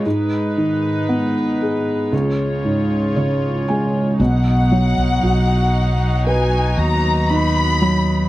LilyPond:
<<
  \new Staff \with { instrumentName = "Violin section" } { \time 4/4 \key b \lydian \tempo 4 = 58 r1 | fis''2 gis''8 ais''8 b''4 | }
  \new Staff \with { instrumentName = "String section" } { \time 4/4 \key b \lydian << { <gis, dis' b'>2 <cis eis' cis''>2 | <dis' fis'>1 | } \\ { gis1 | fis1 | } >> }
  \new Staff \with { instrumentName = "Felt piano" } { \clef bass \time 4/4 \key b \lydian gis,8 dis8 b8 gis'8 cis,8 gis,8 <cis cis''>8 <gis gis''>8 | b,8 fis8 fis'4 b'4 dis'8 fis8 | }
  \new Staff \with { instrumentName = "Fretless electric bass" } { \clef bass \time 4/4 \key b \lydian r1 | b,,8. b,,16 b,,4. dis,4. | }
>>